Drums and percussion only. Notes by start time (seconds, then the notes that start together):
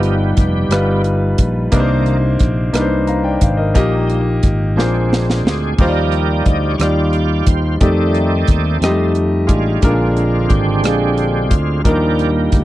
0.03 closed hi-hat
0.37 kick, cross-stick, closed hi-hat
0.71 cross-stick, closed hi-hat
1.04 closed hi-hat
1.38 kick, closed hi-hat
1.72 kick, closed hi-hat
2.06 closed hi-hat
2.39 kick, cross-stick, closed hi-hat
2.74 cross-stick, closed hi-hat
3.07 closed hi-hat
3.41 kick, closed hi-hat
3.75 kick, closed hi-hat
4.10 closed hi-hat
4.43 kick, cross-stick, closed hi-hat
4.79 snare
5.13 snare
5.30 snare
5.47 snare
5.78 kick, crash
6.12 closed hi-hat
6.46 kick, closed hi-hat
6.80 cross-stick, closed hi-hat
7.13 closed hi-hat
7.47 kick, closed hi-hat
7.81 kick, closed hi-hat
8.15 closed hi-hat
8.47 kick, cross-stick, closed hi-hat
8.82 cross-stick, closed hi-hat
9.15 closed hi-hat
9.49 kick, closed hi-hat
9.82 kick, closed hi-hat
10.17 closed hi-hat
10.50 kick, closed hi-hat
10.84 cross-stick, closed hi-hat
11.18 closed hi-hat
11.51 kick, closed hi-hat
11.85 kick, closed hi-hat
12.19 closed hi-hat
12.52 kick, cross-stick, closed hi-hat